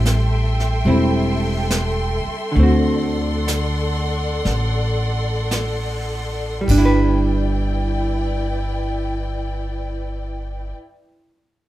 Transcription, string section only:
0.00 6.65 A4 medium
0.00 2.53 E5 medium
0.00 2.53 G5 medium
0.00 6.65 C6 medium
2.57 6.64 D5 medium
2.57 6.64 F#5 medium
6.66 10.70 E4 medium
6.66 10.71 B4 medium
6.66 10.70 D5 medium
6.66 10.70 G5 medium

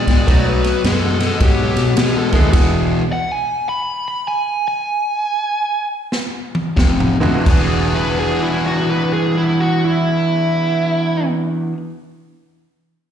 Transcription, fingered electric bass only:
0.07 0.24 G#2 medium
0.27 0.75 B1 medium
0.84 1.31 F#2 medium
1.40 1.71 G#2 medium
1.76 1.94 B2 medium
1.97 2.27 B2 medium
2.33 2.50 D#2 medium
2.53 2.94 E1 loud
6.77 7.14 F1 medium
7.21 7.42 D2 medium
7.47 11.70 E1 medium

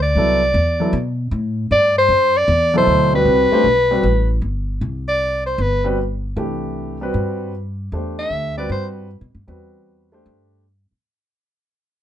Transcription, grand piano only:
0.16 0.39 F#3 medium
0.16 0.39 B3 medium
0.16 0.40 E4 medium
0.16 0.40 A4 medium
0.80 0.91 F#3 medium
0.80 0.92 B3 medium
0.80 0.92 E4 medium
0.80 0.92 A4 medium
2.74 3.10 B2 medium
2.74 3.10 F#3 medium
2.74 3.11 E4 medium
2.74 3.11 A4 medium
3.13 3.62 G3 medium
3.13 3.63 C4 medium
3.13 3.63 F#4 medium
3.13 3.63 B4 medium
3.52 3.64 A3 medium
3.52 3.64 D4 medium
3.52 3.64 G4 medium
3.52 3.64 C5 medium
3.91 4.02 G3 medium
3.91 4.03 C4 medium
3.91 4.03 F#4 medium
3.91 4.03 B4 medium
5.84 5.96 G3 medium
5.84 5.96 C4 medium
5.84 5.97 F#4 medium
5.84 5.97 B4 medium
6.37 6.96 E3 medium
6.37 6.97 A3 medium
6.37 6.97 D4 soft
6.37 6.97 G4 medium
7.01 7.51 G3 medium
7.01 7.51 C4 medium
7.01 7.51 F#4 medium
7.01 7.52 B4 medium
7.93 8.53 A3 medium
7.93 8.52 D4 medium
7.93 8.53 G4 medium
7.93 8.53 C5 medium
8.57 9.07 G3 medium
8.57 9.07 C4 medium
8.57 9.07 F#4 medium
8.57 9.08 B4 medium
9.47 10.07 G3 soft
9.47 10.08 C4 soft
9.47 10.08 F#4 medium
9.47 10.08 B4 medium
10.12 10.62 A3 medium
10.12 10.62 D4 medium
10.12 10.63 G4 medium
10.12 10.63 C5 medium

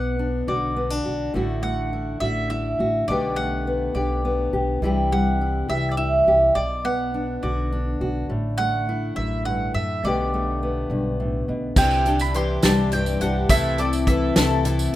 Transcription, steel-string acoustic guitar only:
0.00 0.47 B2 medium
0.00 0.75 B3 medium
0.19 0.76 D4 medium
0.48 1.33 D3 medium
0.48 1.04 F#4 medium
0.76 0.90 B3 medium
0.90 1.34 D4 soft
1.05 1.31 F#4 medium
1.34 2.21 A2 medium
1.34 2.20 D3 medium
1.34 1.63 A3 medium
1.34 1.92 E4 medium
1.34 2.20 F#4 medium
1.63 3.05 A3 medium
1.93 2.50 E4 soft
2.21 3.08 D3 medium
2.21 2.79 F#4 medium
2.51 3.05 E4 medium
2.80 3.05 F#4 medium
3.08 3.95 B2 medium
3.08 3.94 D3 medium
3.08 3.37 A3 medium
3.08 3.66 B3 medium
3.08 3.96 G4 medium
3.38 4.79 A3 medium
3.67 4.24 B3 medium
3.95 4.82 D3 medium
3.95 4.52 G4 medium
4.25 4.82 B3 medium
4.53 4.79 G4 medium
4.82 5.69 C3 medium
4.82 5.67 E3 medium
4.82 5.11 G3 medium
4.82 5.40 E4 medium
4.82 5.69 G4 medium
5.12 6.57 G3 medium
5.41 5.97 E4 soft
5.69 6.52 E3 medium
5.69 6.27 G4 medium
5.98 6.53 E4 medium
6.28 6.53 G4 medium
6.55 7.42 B2 medium
6.84 8.26 B3 medium
7.14 7.72 D4 medium
7.43 10.03 D3 medium
7.43 8.00 F#4 medium
7.72 8.88 D4 medium
8.01 8.26 F#4 medium
8.30 9.74 A2 medium
8.59 10.00 A3 medium
8.89 10.00 E4 medium
9.17 9.46 F#2 medium
9.46 9.75 G2 medium
9.75 10.03 A2 medium
10.04 11.19 B2 medium
10.04 12.34 D3 medium
10.04 10.33 A3 medium
10.04 10.61 B3 medium
10.04 11.75 G4 medium
10.34 11.74 A3 medium
10.63 11.77 B3 medium
10.91 11.19 G2 medium
11.20 11.48 A2 medium
11.49 11.76 B2 medium
11.77 12.34 C3 medium
12.07 13.47 D4 medium
12.35 14.08 E3 medium
12.64 13.50 G3 medium
12.93 13.47 G2 medium
13.23 14.93 E4 medium
13.51 14.08 C3 medium
13.80 14.96 C4 medium
14.08 14.96 E3 medium
14.36 14.96 A3 medium
14.65 14.96 C3 medium

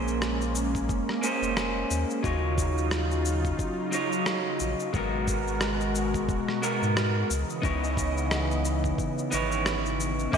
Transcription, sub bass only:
0.00 0.91 A#1 loud
0.90 1.04 F1 loud
1.42 1.85 F1 medium
1.91 2.05 D#2 loud
2.24 3.53 D#2 loud
4.61 4.75 A#1 medium
4.94 6.30 G#1 loud
6.29 6.43 D#1 loud
6.82 7.24 G#2 medium
7.30 7.45 C#2 loud
7.64 8.93 C#2 loud
9.33 10.28 G#1 medium
10.34 10.38 A#1 medium

